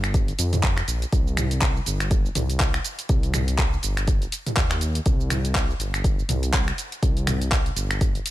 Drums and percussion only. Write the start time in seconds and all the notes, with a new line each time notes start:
0.04 finger snap, closed hi-hat, shaker
0.14 kick, closed hi-hat, shaker
0.28 closed hi-hat, shaker
0.39 open hi-hat, shaker
0.53 closed hi-hat, mid tom, shaker
0.63 kick, clap, closed hi-hat, shaker
0.78 finger snap, clap, closed hi-hat, shaker
0.88 open hi-hat, shaker
1.02 closed hi-hat, shaker
1.12 kick, closed hi-hat, shaker
1.27 shaker
1.37 finger snap, mid tom, open hi-hat, shaker
1.51 closed hi-hat, shaker
1.61 kick, clap, closed hi-hat, shaker
1.76 shaker
1.86 open hi-hat, shaker
2.00 finger snap, closed hi-hat, shaker
2.11 kick, closed hi-hat, shaker
2.26 shaker
2.35 mid tom, open hi-hat, shaker
2.50 closed hi-hat, shaker
2.60 kick, clap, closed hi-hat, shaker
2.74 finger snap, closed hi-hat, shaker
2.84 open hi-hat, shaker
2.99 closed hi-hat, shaker
3.09 kick, closed hi-hat, shaker
3.23 closed hi-hat, shaker
3.34 finger snap, mid tom, open hi-hat, shaker
3.48 closed hi-hat, shaker
3.58 kick, clap, closed hi-hat, shaker
3.73 shaker
3.83 open hi-hat, shaker
3.97 finger snap, closed hi-hat, shaker
4.08 kick, closed hi-hat, shaker
4.22 closed hi-hat, shaker
4.32 open hi-hat, shaker
4.46 closed hi-hat, mid tom, shaker
4.57 kick, clap, closed hi-hat, shaker
4.71 finger snap, clap, closed hi-hat, shaker
4.81 open hi-hat, shaker
4.95 closed hi-hat, shaker
5.06 kick, closed hi-hat, shaker
5.20 shaker
5.30 finger snap, mid tom, open hi-hat, shaker
5.45 closed hi-hat, shaker
5.55 kick, clap, closed hi-hat, shaker
5.70 shaker
5.80 open hi-hat, shaker
5.94 finger snap, closed hi-hat, shaker
6.04 kick, closed hi-hat, shaker
6.19 shaker
6.29 mid tom, open hi-hat, shaker
6.43 closed hi-hat, shaker
6.53 kick, clap, closed hi-hat, shaker
6.68 finger snap, closed hi-hat, shaker
6.78 open hi-hat, shaker
6.92 closed hi-hat, shaker
7.03 kick, closed hi-hat, shaker
7.17 closed hi-hat, shaker
7.27 finger snap, mid tom, open hi-hat, shaker
7.42 closed hi-hat, shaker
7.52 kick, clap, closed hi-hat, shaker
7.66 closed hi-hat, shaker
7.77 open hi-hat, shaker
7.91 finger snap, closed hi-hat, shaker
8.01 kick, closed hi-hat, shaker
8.15 closed hi-hat, shaker
8.26 open hi-hat, shaker